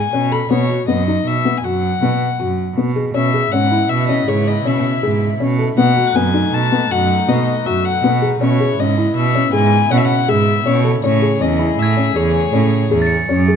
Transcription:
0.00 0.11 G#2 medium
0.00 0.34 G#5 medium
0.13 0.49 B2 medium
0.13 0.25 C#4 medium
0.32 0.44 A4 medium
0.32 0.51 B5 medium
0.50 0.86 B2 medium
0.50 0.63 B3 medium
0.50 0.86 C#5 medium
0.69 0.81 F#4 medium
0.88 1.24 F#2 medium
0.88 1.00 B3 medium
0.88 1.29 D#5 medium
1.08 1.31 D#4 medium
1.27 1.62 B2 medium
1.27 1.59 E5 medium
1.45 1.57 B3 medium
1.58 1.66 G#5 medium
1.64 2.00 F#2 medium
1.64 1.88 F#4 medium
1.64 2.77 F#5 medium
2.02 2.20 B2 medium
2.02 2.26 B3 medium
2.39 2.75 F#2 medium
2.39 2.63 F#4 medium
2.77 3.13 B2 medium
2.77 2.89 B3 medium
2.96 3.08 G#4 medium
3.14 3.50 B2 medium
3.14 5.75 C#3 medium
3.14 5.75 B3 medium
3.14 3.26 C#4 medium
3.14 5.76 E4 medium
3.14 3.53 E5 medium
3.34 3.46 G#4 medium
3.51 3.88 G#2 medium
3.51 3.64 C#4 medium
3.51 3.90 F#5 medium
3.71 3.95 E4 medium
3.89 4.26 B2 medium
3.89 4.08 E5 medium
4.06 4.21 C#4 medium
4.06 4.30 D#5 medium
4.06 4.89 B6 soft
4.28 4.63 G#2 medium
4.28 4.51 G#4 medium
4.28 4.49 C#5 medium
4.47 4.68 D#5 medium
4.65 4.83 B2 medium
4.65 4.89 C#4 medium
4.65 5.22 E5 medium
5.03 5.39 G#2 medium
5.03 5.27 G#4 medium
5.40 5.76 B2 medium
5.40 5.52 C#4 medium
5.59 5.71 A4 medium
5.77 8.38 B2 medium
5.77 6.14 B2 medium
5.77 8.38 A3 medium
5.77 5.90 B3 medium
5.77 8.38 D#4 medium
5.77 6.17 F#5 loud
5.97 6.08 F#4 medium
6.07 6.91 F#6 soft
6.15 6.51 F#2 medium
6.15 6.27 B3 medium
6.15 6.55 G#5 medium
6.34 6.58 D#4 medium
6.53 6.89 B2 medium
6.53 6.92 A5 loud
6.72 6.84 B3 medium
6.91 7.26 F#2 medium
6.91 7.14 F#4 medium
6.91 7.30 F#5 medium
7.29 7.46 B2 medium
7.29 7.52 B3 medium
7.29 7.67 D#5 medium
7.66 8.02 F#2 medium
7.66 7.90 F#4 medium
7.66 7.86 E5 medium
7.85 8.22 F#5 loud
8.04 8.39 B2 medium
8.04 8.16 B3 medium
8.22 8.34 G#4 medium
8.40 8.76 B2 medium
8.40 13.56 C#3 medium
8.40 11.01 B3 medium
8.40 8.53 C#4 medium
8.40 11.01 E4 medium
8.40 8.81 C#5 medium
8.60 8.72 G#4 medium
8.79 9.14 G#2 medium
8.79 8.91 C#4 medium
8.79 9.16 D#5 medium
8.98 9.21 E4 medium
9.15 9.51 B2 medium
9.15 9.51 E5 medium
9.35 9.47 C#4 medium
9.53 9.89 G#2 loud
9.53 9.77 G#4 medium
9.53 9.92 G#5 loud
9.90 10.09 B2 medium
9.90 10.14 C#4 medium
9.90 9.99 F#5 medium
9.97 10.06 E5 medium
10.05 10.30 F#5 medium
10.28 10.64 G#2 medium
10.28 10.52 G#4 medium
10.28 10.68 E5 medium
10.66 11.02 B2 medium
10.66 10.78 C#4 medium
10.66 10.95 C#5 medium
10.84 10.96 A4 medium
11.04 11.39 A2 medium
11.04 13.56 A3 medium
11.04 11.16 C#4 medium
11.04 13.56 G#4 medium
11.04 11.43 C#5 medium
11.22 11.34 G#4 medium
11.40 11.77 E2 loud
11.40 11.53 C#4 medium
11.40 11.81 D#5 medium
11.59 11.83 E4 medium
11.79 12.14 A2 medium
11.79 12.17 E5 medium
11.79 12.67 G#6 medium
11.97 12.09 C#4 medium
12.16 12.52 E2 loud
12.16 12.40 G#4 medium
12.16 13.29 C#5 medium
12.53 12.71 A2 loud
12.53 12.77 C#4 medium
12.91 13.27 E2 medium
12.91 13.15 G#4 medium
13.02 13.56 A6 medium
13.07 13.56 C#7 medium
13.29 13.56 F#2 loud
13.29 13.41 C#4 medium
13.48 13.56 G#4 medium

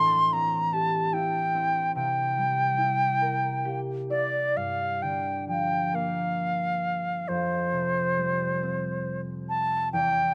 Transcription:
0.00 1.99 A2 medium
0.00 1.99 E3 soft
0.00 1.51 D4 soft
0.00 0.35 C6 medium
0.33 1.54 C4 soft
0.33 0.75 A#5 medium
0.73 3.09 G4 soft
0.73 1.15 A5 medium
1.13 2.78 E4 soft
1.13 1.95 G5 medium
1.54 4.54 C4 soft
1.95 4.60 C3 soft
1.95 3.80 G5 medium
2.38 4.60 G3 soft
2.78 4.09 E4 soft
3.21 5.33 A#4 soft
3.65 6.00 G4 soft
3.65 5.21 G5 soft
4.10 5.54 E4 soft
4.10 5.95 D5 medium
4.10 4.58 D5 medium
4.56 7.32 G2 soft
4.56 5.04 F5 medium
5.02 7.32 D3 soft
5.02 5.48 G5 medium
5.48 7.32 F3 soft
5.48 5.97 G5 medium
5.93 9.14 A#3 soft
5.93 7.30 F5 medium
7.28 9.97 F2 soft
7.28 9.21 C5 medium
7.72 9.97 C3 soft
8.18 9.97 G3 soft
8.63 10.34 C4 soft
9.49 9.89 A5 medium
9.93 10.34 E2 medium
9.93 10.34 G5 medium

